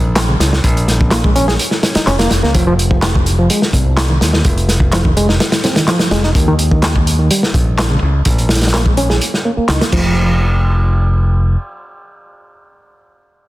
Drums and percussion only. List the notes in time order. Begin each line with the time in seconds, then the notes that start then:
0.16 snare, clap, closed hi-hat
0.40 snare, closed hi-hat
0.53 snare
0.64 kick, closed hi-hat
0.77 closed hi-hat
0.88 snare, closed hi-hat
1.01 kick
1.11 snare, clap, closed hi-hat
1.24 kick
1.36 closed hi-hat
1.48 snare
1.59 closed hi-hat
1.71 snare
1.83 snare, closed hi-hat
1.95 snare, closed hi-hat
2.07 snare, clap, closed hi-hat
2.19 snare, closed hi-hat
2.31 snare, closed hi-hat
2.43 snare
2.54 kick, closed hi-hat
2.79 closed hi-hat
2.91 kick
3.02 snare, clap, closed hi-hat
3.15 kick
3.26 closed hi-hat
3.50 closed hi-hat
3.62 snare
3.73 kick, closed hi-hat
3.97 snare, clap, closed hi-hat
4.21 snare, closed hi-hat
4.33 snare
4.45 kick, closed hi-hat
4.57 closed hi-hat
4.69 snare, closed hi-hat
4.80 kick
4.92 snare, clap, closed hi-hat
5.05 kick
5.17 closed hi-hat
5.29 snare
5.40 snare, closed hi-hat
5.52 snare, closed hi-hat
5.64 snare, closed hi-hat
5.76 snare, closed hi-hat
5.88 snare, clap, closed hi-hat
5.99 snare, closed hi-hat
6.11 snare, closed hi-hat
6.23 snare
6.35 kick, closed hi-hat
6.59 closed hi-hat
6.71 kick
6.82 snare, clap, closed hi-hat
6.96 kick
7.07 closed hi-hat
7.31 closed hi-hat
7.43 snare
7.54 kick, closed hi-hat
7.78 snare, clap, closed hi-hat
8.25 kick, closed hi-hat
8.38 closed hi-hat
8.49 snare, closed hi-hat
8.55 snare, closed hi-hat
8.61 snare, closed hi-hat
8.67 snare, closed hi-hat
8.74 snare, clap, closed hi-hat
8.86 kick
8.97 closed hi-hat
9.10 snare
9.21 closed hi-hat
9.34 snare
9.68 snare, clap, closed hi-hat
9.81 snare, closed hi-hat
9.92 kick, crash